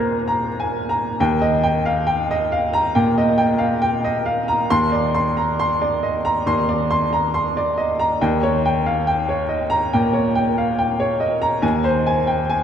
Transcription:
Already playing: A#2 A#4 C5 G#5 A#5 G#6 A#6 C7
0.28 A#5
0.60 G#5
0.89 A#5
1.20 D#2 G5
1.42 D#5
1.64 G5
1.86 F5
2.07 G5
2.31 D#5
2.52 F5
2.74 A#5
2.95 A#2 G5
3.18 D#5
3.38 G5
3.58 F5
3.82 G5
4.04 D#5
4.26 F5
4.48 A#5
4.70 D#2 C6
4.92 D5
5.14 C6
5.37 A#5
5.59 C6
5.82 D5
6.03 D#5
6.25 A#5
6.46 D#2 C6
6.69 D5
6.91 C6
7.13 A#5
7.34 C6
7.57 D5
7.77 D#5
8.00 A#5
8.21 D#2 G5
8.43 C#5
8.66 G5
8.86 F5
9.07 G5
9.29 C#5
9.49 D#5
9.70 A#5
9.93 A#2 G5
10.13 C#5
10.35 G5
10.58 F5
10.79 G5
11.00 C#5
11.20 D#5
11.42 A#5
11.62 D#2 G#5
11.84 C5
12.07 G#5
12.27 G5
12.50 G#5

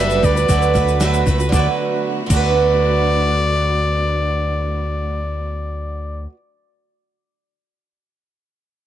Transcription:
Already playing: F#1 G3 D4 F#4 A4 B4
0.00 F#4 B4 E5
0.10 shaker
0.22 D2 G3 D4 F#4 B4 D5, kick, shaker
0.35 D4 F#4 B4, shaker
0.48 D2 D3 F#3 A3 B3 E4 F#4 B4, kick, shaker
0.62 shaker
0.74 F#3 A3 F#4 B4, kick, snare, shaker
0.88 shaker
1.00 D3 F#3 A3 F#4 B4, snare, shaker
1.14 shaker
1.26 C#2 F#3 A3 F#4 B4, kick, shaker
1.38 A3 F#4 B4, shaker
1.49 D2 D3 F#3 A3 B3 E4 F#4, kick, snare
1.53 A3 D5, shaker
1.57 F#4 B4
2.26 D2 D3 F#3, kick, crash, shaker
2.31 A3 F#4 D5
2.37 B4

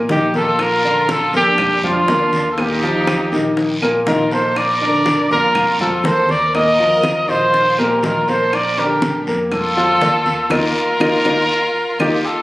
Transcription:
0.09 A#1 D#3 D#4 G4 D#5, high bongo, low bongo, high conga, short guiro
0.34 A#3 F4 A4 A#4 A#5, high bongo, high conga, short guiro
0.59 F4 A#4, high bongo, high conga, long guiro, claves
0.84 D3 D4 D5, high conga
1.09 F4 A4, high bongo, high conga, short guiro
1.33 F2 A#3 D4 G4 A#4 A#5, high conga, short guiro
1.58 high bongo, high conga, low conga, long guiro, claves
1.83 F3 D4 F4 F5, high conga, low conga
2.08 D#2 A#3 A#4 A#5, high bongo, low bongo, high conga, short guiro
2.33 high conga, short guiro
2.51 F4 A4
2.58 A#2 A#3 D#4 G4 A#4, high bongo, high conga, long guiro, claves
2.82 F3 F4 F5, high bongo, high conga
3.07 high bongo, high conga, short guiro, claves
3.32 A#1 D#3 D#4 D#5, high conga, short guiro
3.57 high bongo, high conga, long guiro
3.82 A#2 A#3 A#4, high bongo, high conga, claves
4.07 A#1 D#3 D#4 F4 A#4 D#5, high bongo, low bongo, high conga, short guiro
4.31 A#3 A4 A#4 C5 A#5, high bongo, short guiro
4.56 A#4 D5, high bongo, high conga, long guiro, claves
4.81 D3 D4 D5, high conga
5.06 high bongo, high conga, short guiro
5.30 F2 A#3 F4 A#4 A#5, high conga, short guiro
5.55 high bongo, high conga, low conga, long guiro, claves
5.80 F3 F4 A4 F5, high conga, low conga
6.04 D#2 A#3 A4 A#4 C5 A#5, high bongo, low bongo, high conga, short guiro
6.29 A#4 D5, high conga, short guiro
6.54 A#2 A#3 A#4 D#5, high bongo, high conga, long guiro, claves
6.79 F3 F4 F5, high bongo, high conga
7.04 high bongo, high conga, short guiro, claves
7.28 A#1 D#3 D#4 F4 C5 D#5, high conga, short guiro
7.53 high bongo, high conga, long guiro
7.78 A#2 A#3 G4 A#4, high bongo, high conga, claves
8.03 A#1 D#3 D#4 F4 A#4 D#5, high bongo, low bongo, high conga, short guiro
8.28 A#3 A4 A#4 C5 A#5, high bongo, short guiro
8.53 A#4 D5, high bongo, high conga, long guiro, claves
8.78 D3 D4 G4 A#4 D5, high conga
9.02 high bongo, high conga, short guiro
9.27 F2 A#3 A#4 A#5, high conga, short guiro
9.52 F4 A4, high bongo, high conga, low conga, long guiro, claves
9.76 F3 F4 F5, high conga
10.01 D#2 A#3 D5 A5, high bongo, low bongo, high conga, short guiro
10.26 high conga, short guiro
10.50 D#2 A#3 D#4 F4 A#4, high bongo, high conga, long guiro, claves
11.00 D#2 A#3 D#4 F4, high bongo, high conga, long guiro, claves
11.25 D#2 A#3 D#4 F4, high bongo, high conga, long guiro, claves
12.00 D#2 A#3 D#4 F4 G4, high bongo, high conga, long guiro, claves
12.26 F4 A4

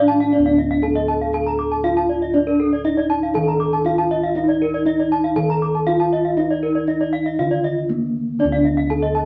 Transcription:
Already playing: A2 D#3 D4
0.08 A5
0.20 F5
0.32 D4 D5
0.38 D2
0.46 F5
0.58 D#5
0.71 F5
0.82 D#4 A4 A5
0.96 D#5
1.08 A5
1.21 F5
1.33 A4 A5
1.47 A#5
1.59 D6
1.72 A5
1.84 D#4 F4 F5
1.97 A5
2.09 D5
2.22 D#5
2.34 D4 D5
2.47 A#4
2.60 A4
2.73 D5
2.85 D#4 D#5
2.97 D5
3.10 A5
3.23 F5
3.34 D#3 A4 A5
3.48 A#5
3.60 D6
3.73 A5
3.85 D#4 F4 F5
3.98 A5
4.11 D#5
4.24 F5
4.35 D#4 D#5
4.48 D5
4.62 A#4
4.74 D5
4.86 D#4 D#5
5.00 D5
5.12 A5
5.24 F5
5.36 D#3 A4 A5
5.50 A#5
5.62 D6
5.75 A5
5.87 D#4 F4 F5
6.00 A5
6.13 D#5
6.25 F5
6.37 D#4 D#5
6.51 D5
6.63 A#4
6.75 D5
6.87 D#4 D#5
7.01 D5
7.13 F5
7.26 D#5
7.39 D3 F4 F5
7.51 D5
7.64 D#5
7.89 A#3 D#4
8.39 D3 D4 D5
8.44 D2
8.52 F5
8.65 D#5
8.77 F5
8.90 D#4 A4 A5
9.03 D#5
9.15 A5

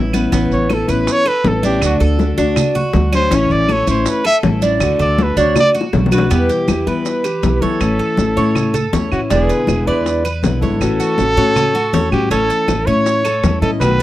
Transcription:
Already playing: A1 E3 B3 C#4 E4
0.13 B3 C#4 E4, high bongo, high conga, claves, maracas
0.32 A1 E3 B3 C#4 E4, high bongo, maracas
0.51 A1 C#5, high conga, maracas
0.69 E3 B3 C#4 E4 A4, high bongo, high conga, claves, maracas
0.74 A4
0.88 A1 B3 C#4 E4 B4, high conga, maracas
1.07 high bongo, high conga, maracas
1.12 C#5
1.25 A4 B4, muted nylon-string guitar stroke, high conga, claves, maracas
1.44 A1 E3 B3 C#4 E4 A4, high bongo, low bongo, high conga, maracas
1.62 B3 C#4 D4 E4 G4, high conga, maracas
1.81 D2 D3 A3 D4 F#4, high bongo, claves, maracas
1.86 F#4
2.00 D2 A4, high bongo, high conga, maracas
2.19 D3 A3 D4 F#4, high bongo, high conga, maracas
2.37 D2 A3 D4 F#4, high conga, maracas
2.56 high bongo, high conga, low conga, claves, maracas
2.75 F#4, muted nylon-string guitar stroke, high bongo, high conga, low conga, maracas
2.93 D2 D3 A3 D4 F#4, high bongo, low bongo, high conga, maracas
3.12 A3 C#4 D4 F#4 C5, high bongo, high conga, claves, maracas
3.31 A1 E3 A3 C#4 E4, high bongo, high conga, maracas
3.35 C#5
3.50 A1 D5, high conga, maracas
3.68 E3 A3 C#4 E4 A4, high bongo, high conga, claves, maracas
3.72 C#5
3.87 A1 A3 C#4 E4 C5 C#5, high conga, maracas
4.06 B4, high bongo, high conga, maracas
4.24 A4 E5, muted nylon-string guitar stroke, high conga, claves, maracas
4.43 A1 E3 A3 C#4 E4, high bongo, low bongo, high conga, maracas
4.62 A3 C#4 D4 E4, high conga, maracas
4.80 D2 D3 A3 D4 F#4, high bongo, high conga, claves, maracas
4.99 D2 A4 D5, high bongo, high conga, maracas
5.18 D3 A3 D4 F#4, high bongo, high conga, maracas
5.22 B4
5.37 D2 A3 D4 F#4 C#5, high conga, maracas
5.56 high bongo, high conga, low conga, claves, maracas
5.60 D5
5.74 F#4, muted nylon-string guitar stroke, high conga, maracas
5.81 high bongo
5.93 B1 D3 A3 D4 F#4, low bongo, high conga, maracas
6.06 low bongo
6.11 A3 B3 D4 F#4, high conga, claves, maracas
6.18 low bongo
6.30 E2 B2 E3 G3 B3 E4 G4, high bongo, maracas
6.49 G4, high conga, maracas
6.68 E2 E3 G3 B3 E4, high bongo, high conga, claves, maracas
6.86 E3 G3 B3 E4 B4, high conga, maracas
7.05 high bongo, high conga, maracas
7.24 G4, muted nylon-string guitar stroke, high conga, claves, maracas
7.42 B1 E3 G3 B3 E4, high bongo, low bongo, high conga, maracas
7.61 E3 G3 B3 E4 A4 C#5, high conga, maracas
7.80 A1 E3 A3 C#4 E4, high bongo, claves, maracas
7.99 A4, high conga
8.17 A1 E3 A3 C#4 E4, high bongo, high conga, maracas
8.36 A2 A3 C#4 E4 C#5, high bongo, high conga, maracas
8.55 high bongo, high conga, low conga, claves, maracas
8.74 A4, muted nylon-string guitar stroke, high bongo, high conga, low conga, maracas
8.92 E2 E3 A3 C#4 E4 C#5, high bongo, low bongo, high conga, maracas
9.12 A2 A3 C#4 E4 F#4, high bongo, claves, maracas
9.30 E1 B2 D3 G#3 B3 D4 E4 G#4, high bongo, high conga, maracas
9.49 B4, high conga, maracas
9.67 E1 D3 G#3 B3 E4, high bongo, high conga, claves, maracas
9.87 E2 D3 G#3 B3 E4 B4 D5, maracas
10.06 high bongo, high conga, maracas
10.24 B4, muted nylon-string guitar stroke, high conga, claves, maracas
10.43 B1 D3 G#3 B3 E4, high bongo, low bongo, high conga, maracas
10.61 G#1 D3 G#3 B3 E4 A4 C#5, high conga, maracas
10.81 A1 E3 A3 C#4 F#4, high bongo, claves, maracas
11.00 F#4, high conga, maracas
11.18 A1 E3 A3 C#4 F#4, high bongo, high conga, maracas
11.37 A2 A3 C#4 F#4 C#5, high bongo, high conga, maracas
11.56 high bongo, high conga, low conga, claves, maracas
11.75 F#4, muted nylon-string guitar stroke, high bongo, high conga
11.93 E2 E3 A3 C#4 F#4 C#5, high bongo, low bongo, high conga, maracas
12.12 A2 A3 C#4 F#4 G4, high bongo, high conga, claves, maracas
12.31 A1 E3 A3 C#4 E4 A4, high bongo, maracas
12.50 A4, high conga, maracas
12.68 A1 E3 A3 C#4 E4, high bongo, high conga, claves, maracas
12.86 A2 A3 C#4 E4 C#5, high conga, maracas
13.06 high bongo, high conga, maracas
13.24 A4, muted nylon-string guitar stroke, high conga, claves, maracas
13.43 E2 E3 A3 C#4 E4, high bongo, low bongo, high conga, maracas
13.62 A2 A3 C#4 E4 A4 D#5, high conga, maracas
13.80 B1 B2 D#3 A3 B3 F#4 B4, high bongo, high conga, claves, maracas

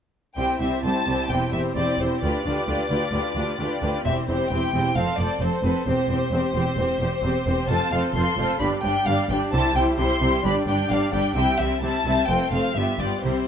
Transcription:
0.36 C2 C4 E4 G4 C5 G5
0.61 C2 C4 E4 G4 C5 E5
0.84 C2 C4 E4 G4 C5 A5
1.07 C2 C4 E4 G4 C5
1.30 E1 E2 C4 E4 G4 C5 G5
1.52 E1 E2 C4 E4 G4 C5 E5
1.75 E1 E2 C4 E4 G4 C5 D5
1.99 E1 E2 C4 E4 G4 C5
2.21 D2 D4 F4 G4 B4 D5
2.45 D2 D4 F4 G4 B4
2.67 D2 D4 F4 G4 B4
2.90 D2 D4 F4 G4 B4
3.12 D2 D4 F4 G4 B4
3.35 D2 D4 F4 G4 B4
3.58 D2 D4 F4 G4 B4
3.81 D2 D4 F4 G4 B4
4.04 E1 E2 C4 E4 G4 C5 E5
4.28 E1 E2 C4 E4 G4 C5
4.51 E1 E2 C4 E4 G4 C5 G5
4.74 E1 E2 C4 E4 G4 C5
4.96 F1 F2 C4 A4 C5 F5
5.18 F1 F2 C4 A4 C5 D5
5.41 F1 F2 C4 A4 C5
5.63 F1 F2 C4 A4 B4 C5
5.86 E1 E2 C4 G4 C5
6.09 E1 E2 C4 G4 C5
6.31 E1 E2 C4 G4 C5
6.54 E1 E2 C4 G4 C5
6.77 E1 E2 C4 G4 C5
7.00 E1 E2 C4 G4 C5
7.23 E1 E2 C4 G4 C5
7.46 E1 E2 C4 G4 C5
7.69 F1 F2 C4 F4 A4 C5 A5
7.92 F1 F2 C4 F4 A4 C5 F5
8.15 F1 F2 C4 F4 A4 C5 C6
8.37 F1 F2 C4 F4 A4 C5
8.60 G1 G2 G3 D4 G4 D5 B5
8.83 G1 G2 G3 D4 G4 D5 G5
9.06 G1 G2 G3 D4 G4 D5 F5
9.30 G1 G2 G3 D4 G4 D5 G5
9.53 C2 C3 G3 E4 G4 C5 A5
9.75 C2 C3 G3 E4 G4 C5 G5
9.98 C2 C3 G3 E4 G4 C5 C6
10.21 C2 C3 G3 E4 G4 C5
10.44 G1 G2 G3 D4 G4 D5 B5
10.67 G1 G2 G3 D4 G4 D5 G5
10.89 G1 G2 G3 D4 G4 D5 F5
11.13 G1 G2 G3 D4 G4 D5 G5
11.36 C2 C3 G3 C4 E4 E5 G5
11.59 C2 C3 G3 C4 E4 E5
11.82 C2 C3 G3 C4 E4 E5 A5
12.05 C2 C3 G3 C4 E4 E5
12.28 F1 F2 A3 C4 F4 C5 G5
12.51 F1 F2 A3 C4 F4 C5 F5
12.75 G1 G2 G3 B3 F4 G4 E5
12.99 G1 G2 G3 B3 F4 G4 D5
13.23 C2 C3 G3 C4 E4 G4 C5

